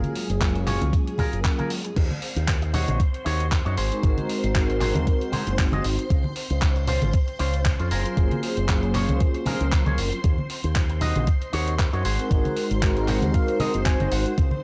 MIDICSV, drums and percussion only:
0, 0, Header, 1, 2, 480
1, 0, Start_track
1, 0, Tempo, 517241
1, 1824, Time_signature, 4, 2, 24, 8
1, 13581, End_track
2, 0, Start_track
2, 0, Title_t, "Drums"
2, 35, Note_on_c, 9, 42, 37
2, 35, Note_on_c, 9, 63, 60
2, 128, Note_off_c, 9, 42, 0
2, 128, Note_off_c, 9, 63, 0
2, 144, Note_on_c, 9, 46, 96
2, 237, Note_off_c, 9, 46, 0
2, 277, Note_on_c, 9, 42, 53
2, 370, Note_off_c, 9, 42, 0
2, 384, Note_on_c, 9, 36, 106
2, 385, Note_on_c, 9, 42, 78
2, 387, Note_on_c, 9, 39, 113
2, 476, Note_off_c, 9, 36, 0
2, 478, Note_off_c, 9, 42, 0
2, 480, Note_off_c, 9, 39, 0
2, 515, Note_on_c, 9, 42, 35
2, 608, Note_off_c, 9, 42, 0
2, 625, Note_on_c, 9, 46, 92
2, 625, Note_on_c, 9, 64, 72
2, 627, Note_on_c, 9, 39, 35
2, 717, Note_off_c, 9, 46, 0
2, 718, Note_off_c, 9, 64, 0
2, 720, Note_off_c, 9, 39, 0
2, 754, Note_on_c, 9, 63, 88
2, 757, Note_on_c, 9, 42, 52
2, 847, Note_off_c, 9, 63, 0
2, 850, Note_off_c, 9, 42, 0
2, 864, Note_on_c, 9, 36, 109
2, 865, Note_on_c, 9, 42, 82
2, 957, Note_off_c, 9, 36, 0
2, 958, Note_off_c, 9, 42, 0
2, 997, Note_on_c, 9, 42, 36
2, 1090, Note_off_c, 9, 42, 0
2, 1094, Note_on_c, 9, 63, 54
2, 1101, Note_on_c, 9, 64, 71
2, 1104, Note_on_c, 9, 36, 58
2, 1104, Note_on_c, 9, 46, 96
2, 1187, Note_off_c, 9, 63, 0
2, 1194, Note_off_c, 9, 64, 0
2, 1197, Note_off_c, 9, 36, 0
2, 1197, Note_off_c, 9, 46, 0
2, 1236, Note_on_c, 9, 42, 56
2, 1329, Note_off_c, 9, 42, 0
2, 1343, Note_on_c, 9, 42, 77
2, 1344, Note_on_c, 9, 36, 109
2, 1345, Note_on_c, 9, 39, 118
2, 1436, Note_off_c, 9, 42, 0
2, 1437, Note_off_c, 9, 36, 0
2, 1438, Note_off_c, 9, 39, 0
2, 1475, Note_on_c, 9, 42, 37
2, 1483, Note_on_c, 9, 63, 59
2, 1567, Note_off_c, 9, 42, 0
2, 1576, Note_off_c, 9, 63, 0
2, 1581, Note_on_c, 9, 46, 102
2, 1674, Note_off_c, 9, 46, 0
2, 1714, Note_on_c, 9, 42, 54
2, 1807, Note_off_c, 9, 42, 0
2, 1824, Note_on_c, 9, 36, 111
2, 1824, Note_on_c, 9, 42, 73
2, 1824, Note_on_c, 9, 49, 71
2, 1917, Note_off_c, 9, 36, 0
2, 1917, Note_off_c, 9, 42, 0
2, 1917, Note_off_c, 9, 49, 0
2, 1954, Note_on_c, 9, 63, 59
2, 2047, Note_off_c, 9, 63, 0
2, 2062, Note_on_c, 9, 46, 100
2, 2154, Note_off_c, 9, 46, 0
2, 2195, Note_on_c, 9, 42, 53
2, 2288, Note_off_c, 9, 42, 0
2, 2303, Note_on_c, 9, 42, 82
2, 2304, Note_on_c, 9, 36, 111
2, 2305, Note_on_c, 9, 39, 122
2, 2395, Note_off_c, 9, 42, 0
2, 2397, Note_off_c, 9, 36, 0
2, 2398, Note_off_c, 9, 39, 0
2, 2434, Note_on_c, 9, 42, 35
2, 2527, Note_off_c, 9, 42, 0
2, 2542, Note_on_c, 9, 46, 96
2, 2544, Note_on_c, 9, 64, 82
2, 2635, Note_off_c, 9, 46, 0
2, 2637, Note_off_c, 9, 64, 0
2, 2674, Note_on_c, 9, 63, 85
2, 2675, Note_on_c, 9, 42, 53
2, 2767, Note_off_c, 9, 63, 0
2, 2768, Note_off_c, 9, 42, 0
2, 2783, Note_on_c, 9, 36, 113
2, 2784, Note_on_c, 9, 42, 81
2, 2876, Note_off_c, 9, 36, 0
2, 2877, Note_off_c, 9, 42, 0
2, 2917, Note_on_c, 9, 42, 36
2, 3009, Note_off_c, 9, 42, 0
2, 3024, Note_on_c, 9, 46, 98
2, 3117, Note_off_c, 9, 46, 0
2, 3158, Note_on_c, 9, 42, 53
2, 3251, Note_off_c, 9, 42, 0
2, 3264, Note_on_c, 9, 36, 115
2, 3265, Note_on_c, 9, 42, 78
2, 3268, Note_on_c, 9, 39, 115
2, 3356, Note_off_c, 9, 36, 0
2, 3358, Note_off_c, 9, 42, 0
2, 3360, Note_off_c, 9, 39, 0
2, 3397, Note_on_c, 9, 42, 35
2, 3489, Note_off_c, 9, 42, 0
2, 3503, Note_on_c, 9, 46, 105
2, 3596, Note_off_c, 9, 46, 0
2, 3636, Note_on_c, 9, 42, 53
2, 3729, Note_off_c, 9, 42, 0
2, 3744, Note_on_c, 9, 36, 123
2, 3744, Note_on_c, 9, 42, 76
2, 3837, Note_off_c, 9, 36, 0
2, 3837, Note_off_c, 9, 42, 0
2, 3875, Note_on_c, 9, 63, 56
2, 3876, Note_on_c, 9, 42, 37
2, 3968, Note_off_c, 9, 63, 0
2, 3969, Note_off_c, 9, 42, 0
2, 3985, Note_on_c, 9, 46, 102
2, 4078, Note_off_c, 9, 46, 0
2, 4118, Note_on_c, 9, 42, 50
2, 4210, Note_off_c, 9, 42, 0
2, 4224, Note_on_c, 9, 36, 118
2, 4225, Note_on_c, 9, 42, 80
2, 4227, Note_on_c, 9, 39, 121
2, 4317, Note_off_c, 9, 36, 0
2, 4318, Note_off_c, 9, 42, 0
2, 4320, Note_off_c, 9, 39, 0
2, 4358, Note_on_c, 9, 42, 35
2, 4451, Note_off_c, 9, 42, 0
2, 4465, Note_on_c, 9, 46, 105
2, 4465, Note_on_c, 9, 64, 82
2, 4467, Note_on_c, 9, 39, 35
2, 4558, Note_off_c, 9, 46, 0
2, 4558, Note_off_c, 9, 64, 0
2, 4560, Note_off_c, 9, 39, 0
2, 4591, Note_on_c, 9, 63, 90
2, 4598, Note_on_c, 9, 42, 51
2, 4683, Note_off_c, 9, 63, 0
2, 4691, Note_off_c, 9, 42, 0
2, 4705, Note_on_c, 9, 36, 114
2, 4705, Note_on_c, 9, 42, 75
2, 4797, Note_off_c, 9, 36, 0
2, 4798, Note_off_c, 9, 42, 0
2, 4838, Note_on_c, 9, 42, 36
2, 4931, Note_off_c, 9, 42, 0
2, 4940, Note_on_c, 9, 63, 65
2, 4943, Note_on_c, 9, 64, 77
2, 4945, Note_on_c, 9, 46, 106
2, 5032, Note_off_c, 9, 63, 0
2, 5036, Note_off_c, 9, 64, 0
2, 5038, Note_off_c, 9, 46, 0
2, 5076, Note_on_c, 9, 42, 53
2, 5169, Note_off_c, 9, 42, 0
2, 5185, Note_on_c, 9, 36, 119
2, 5185, Note_on_c, 9, 42, 74
2, 5187, Note_on_c, 9, 39, 123
2, 5277, Note_off_c, 9, 36, 0
2, 5278, Note_off_c, 9, 42, 0
2, 5280, Note_off_c, 9, 39, 0
2, 5308, Note_on_c, 9, 63, 71
2, 5317, Note_on_c, 9, 42, 36
2, 5400, Note_off_c, 9, 63, 0
2, 5409, Note_off_c, 9, 42, 0
2, 5423, Note_on_c, 9, 46, 106
2, 5516, Note_off_c, 9, 46, 0
2, 5557, Note_on_c, 9, 42, 53
2, 5650, Note_off_c, 9, 42, 0
2, 5664, Note_on_c, 9, 36, 125
2, 5665, Note_on_c, 9, 42, 69
2, 5757, Note_off_c, 9, 36, 0
2, 5757, Note_off_c, 9, 42, 0
2, 5793, Note_on_c, 9, 63, 63
2, 5885, Note_off_c, 9, 63, 0
2, 5901, Note_on_c, 9, 46, 105
2, 5994, Note_off_c, 9, 46, 0
2, 6034, Note_on_c, 9, 42, 49
2, 6127, Note_off_c, 9, 42, 0
2, 6142, Note_on_c, 9, 42, 77
2, 6144, Note_on_c, 9, 36, 117
2, 6144, Note_on_c, 9, 39, 115
2, 6235, Note_off_c, 9, 42, 0
2, 6237, Note_off_c, 9, 36, 0
2, 6237, Note_off_c, 9, 39, 0
2, 6274, Note_on_c, 9, 42, 35
2, 6366, Note_off_c, 9, 42, 0
2, 6380, Note_on_c, 9, 46, 107
2, 6381, Note_on_c, 9, 64, 80
2, 6473, Note_off_c, 9, 46, 0
2, 6473, Note_off_c, 9, 64, 0
2, 6514, Note_on_c, 9, 42, 50
2, 6514, Note_on_c, 9, 63, 89
2, 6607, Note_off_c, 9, 42, 0
2, 6607, Note_off_c, 9, 63, 0
2, 6621, Note_on_c, 9, 42, 76
2, 6624, Note_on_c, 9, 36, 115
2, 6714, Note_off_c, 9, 42, 0
2, 6717, Note_off_c, 9, 36, 0
2, 6754, Note_on_c, 9, 42, 34
2, 6847, Note_off_c, 9, 42, 0
2, 6862, Note_on_c, 9, 46, 104
2, 6955, Note_off_c, 9, 46, 0
2, 6994, Note_on_c, 9, 42, 51
2, 7087, Note_off_c, 9, 42, 0
2, 7102, Note_on_c, 9, 42, 72
2, 7104, Note_on_c, 9, 36, 120
2, 7104, Note_on_c, 9, 39, 114
2, 7195, Note_off_c, 9, 42, 0
2, 7197, Note_off_c, 9, 36, 0
2, 7197, Note_off_c, 9, 39, 0
2, 7234, Note_on_c, 9, 42, 35
2, 7327, Note_off_c, 9, 42, 0
2, 7341, Note_on_c, 9, 46, 110
2, 7434, Note_off_c, 9, 46, 0
2, 7475, Note_on_c, 9, 42, 50
2, 7568, Note_off_c, 9, 42, 0
2, 7583, Note_on_c, 9, 42, 68
2, 7584, Note_on_c, 9, 36, 121
2, 7676, Note_off_c, 9, 42, 0
2, 7677, Note_off_c, 9, 36, 0
2, 7715, Note_on_c, 9, 42, 33
2, 7725, Note_on_c, 9, 63, 57
2, 7808, Note_off_c, 9, 42, 0
2, 7817, Note_off_c, 9, 63, 0
2, 7823, Note_on_c, 9, 46, 101
2, 7916, Note_off_c, 9, 46, 0
2, 7954, Note_on_c, 9, 42, 49
2, 8046, Note_off_c, 9, 42, 0
2, 8061, Note_on_c, 9, 42, 74
2, 8063, Note_on_c, 9, 36, 115
2, 8064, Note_on_c, 9, 39, 113
2, 8154, Note_off_c, 9, 42, 0
2, 8156, Note_off_c, 9, 36, 0
2, 8156, Note_off_c, 9, 39, 0
2, 8194, Note_on_c, 9, 42, 34
2, 8286, Note_off_c, 9, 42, 0
2, 8301, Note_on_c, 9, 46, 101
2, 8304, Note_on_c, 9, 39, 35
2, 8307, Note_on_c, 9, 64, 64
2, 8394, Note_off_c, 9, 46, 0
2, 8397, Note_off_c, 9, 39, 0
2, 8400, Note_off_c, 9, 64, 0
2, 8432, Note_on_c, 9, 42, 48
2, 8437, Note_on_c, 9, 63, 81
2, 8525, Note_off_c, 9, 42, 0
2, 8529, Note_off_c, 9, 63, 0
2, 8541, Note_on_c, 9, 42, 71
2, 8544, Note_on_c, 9, 36, 114
2, 8633, Note_off_c, 9, 42, 0
2, 8636, Note_off_c, 9, 36, 0
2, 8671, Note_on_c, 9, 42, 33
2, 8764, Note_off_c, 9, 42, 0
2, 8775, Note_on_c, 9, 63, 63
2, 8780, Note_on_c, 9, 46, 104
2, 8780, Note_on_c, 9, 64, 85
2, 8868, Note_off_c, 9, 63, 0
2, 8873, Note_off_c, 9, 46, 0
2, 8873, Note_off_c, 9, 64, 0
2, 8914, Note_on_c, 9, 42, 48
2, 9007, Note_off_c, 9, 42, 0
2, 9023, Note_on_c, 9, 42, 71
2, 9024, Note_on_c, 9, 36, 122
2, 9025, Note_on_c, 9, 39, 112
2, 9116, Note_off_c, 9, 42, 0
2, 9117, Note_off_c, 9, 36, 0
2, 9118, Note_off_c, 9, 39, 0
2, 9152, Note_on_c, 9, 63, 74
2, 9154, Note_on_c, 9, 42, 34
2, 9244, Note_off_c, 9, 63, 0
2, 9246, Note_off_c, 9, 42, 0
2, 9261, Note_on_c, 9, 46, 110
2, 9354, Note_off_c, 9, 46, 0
2, 9395, Note_on_c, 9, 42, 47
2, 9488, Note_off_c, 9, 42, 0
2, 9502, Note_on_c, 9, 42, 72
2, 9504, Note_on_c, 9, 36, 119
2, 9594, Note_off_c, 9, 42, 0
2, 9596, Note_off_c, 9, 36, 0
2, 9636, Note_on_c, 9, 63, 56
2, 9729, Note_off_c, 9, 63, 0
2, 9742, Note_on_c, 9, 46, 99
2, 9835, Note_off_c, 9, 46, 0
2, 9873, Note_on_c, 9, 42, 46
2, 9966, Note_off_c, 9, 42, 0
2, 9981, Note_on_c, 9, 42, 72
2, 9983, Note_on_c, 9, 36, 113
2, 9983, Note_on_c, 9, 39, 107
2, 10074, Note_off_c, 9, 42, 0
2, 10076, Note_off_c, 9, 36, 0
2, 10076, Note_off_c, 9, 39, 0
2, 10111, Note_on_c, 9, 42, 33
2, 10204, Note_off_c, 9, 42, 0
2, 10218, Note_on_c, 9, 46, 97
2, 10222, Note_on_c, 9, 64, 69
2, 10311, Note_off_c, 9, 46, 0
2, 10315, Note_off_c, 9, 64, 0
2, 10353, Note_on_c, 9, 42, 49
2, 10358, Note_on_c, 9, 63, 101
2, 10445, Note_off_c, 9, 42, 0
2, 10451, Note_off_c, 9, 63, 0
2, 10460, Note_on_c, 9, 42, 75
2, 10463, Note_on_c, 9, 36, 115
2, 10553, Note_off_c, 9, 42, 0
2, 10556, Note_off_c, 9, 36, 0
2, 10594, Note_on_c, 9, 42, 33
2, 10687, Note_off_c, 9, 42, 0
2, 10702, Note_on_c, 9, 46, 106
2, 10795, Note_off_c, 9, 46, 0
2, 10836, Note_on_c, 9, 42, 51
2, 10928, Note_off_c, 9, 42, 0
2, 10943, Note_on_c, 9, 36, 116
2, 10944, Note_on_c, 9, 42, 73
2, 10946, Note_on_c, 9, 39, 106
2, 11036, Note_off_c, 9, 36, 0
2, 11037, Note_off_c, 9, 42, 0
2, 11039, Note_off_c, 9, 39, 0
2, 11076, Note_on_c, 9, 42, 34
2, 11169, Note_off_c, 9, 42, 0
2, 11182, Note_on_c, 9, 46, 107
2, 11275, Note_off_c, 9, 46, 0
2, 11315, Note_on_c, 9, 42, 49
2, 11408, Note_off_c, 9, 42, 0
2, 11422, Note_on_c, 9, 36, 119
2, 11422, Note_on_c, 9, 42, 74
2, 11515, Note_off_c, 9, 36, 0
2, 11515, Note_off_c, 9, 42, 0
2, 11555, Note_on_c, 9, 42, 35
2, 11556, Note_on_c, 9, 63, 50
2, 11648, Note_off_c, 9, 42, 0
2, 11649, Note_off_c, 9, 63, 0
2, 11660, Note_on_c, 9, 46, 94
2, 11753, Note_off_c, 9, 46, 0
2, 11793, Note_on_c, 9, 42, 49
2, 11886, Note_off_c, 9, 42, 0
2, 11902, Note_on_c, 9, 36, 107
2, 11902, Note_on_c, 9, 42, 76
2, 11904, Note_on_c, 9, 39, 111
2, 11995, Note_off_c, 9, 36, 0
2, 11995, Note_off_c, 9, 42, 0
2, 11997, Note_off_c, 9, 39, 0
2, 12033, Note_on_c, 9, 42, 35
2, 12126, Note_off_c, 9, 42, 0
2, 12139, Note_on_c, 9, 46, 97
2, 12142, Note_on_c, 9, 39, 32
2, 12147, Note_on_c, 9, 64, 66
2, 12232, Note_off_c, 9, 46, 0
2, 12234, Note_off_c, 9, 39, 0
2, 12239, Note_off_c, 9, 64, 0
2, 12267, Note_on_c, 9, 63, 91
2, 12272, Note_on_c, 9, 42, 48
2, 12359, Note_off_c, 9, 63, 0
2, 12365, Note_off_c, 9, 42, 0
2, 12381, Note_on_c, 9, 42, 75
2, 12382, Note_on_c, 9, 36, 108
2, 12474, Note_off_c, 9, 42, 0
2, 12475, Note_off_c, 9, 36, 0
2, 12512, Note_on_c, 9, 42, 34
2, 12605, Note_off_c, 9, 42, 0
2, 12618, Note_on_c, 9, 64, 70
2, 12620, Note_on_c, 9, 46, 101
2, 12620, Note_on_c, 9, 63, 65
2, 12711, Note_off_c, 9, 64, 0
2, 12713, Note_off_c, 9, 46, 0
2, 12713, Note_off_c, 9, 63, 0
2, 12751, Note_on_c, 9, 42, 50
2, 12844, Note_off_c, 9, 42, 0
2, 12860, Note_on_c, 9, 42, 74
2, 12862, Note_on_c, 9, 39, 111
2, 12863, Note_on_c, 9, 36, 118
2, 12953, Note_off_c, 9, 42, 0
2, 12955, Note_off_c, 9, 39, 0
2, 12956, Note_off_c, 9, 36, 0
2, 12993, Note_on_c, 9, 42, 36
2, 12995, Note_on_c, 9, 63, 61
2, 13086, Note_off_c, 9, 42, 0
2, 13088, Note_off_c, 9, 63, 0
2, 13100, Note_on_c, 9, 46, 105
2, 13193, Note_off_c, 9, 46, 0
2, 13233, Note_on_c, 9, 42, 50
2, 13326, Note_off_c, 9, 42, 0
2, 13343, Note_on_c, 9, 42, 78
2, 13344, Note_on_c, 9, 36, 116
2, 13435, Note_off_c, 9, 42, 0
2, 13436, Note_off_c, 9, 36, 0
2, 13468, Note_on_c, 9, 63, 58
2, 13561, Note_off_c, 9, 63, 0
2, 13581, End_track
0, 0, End_of_file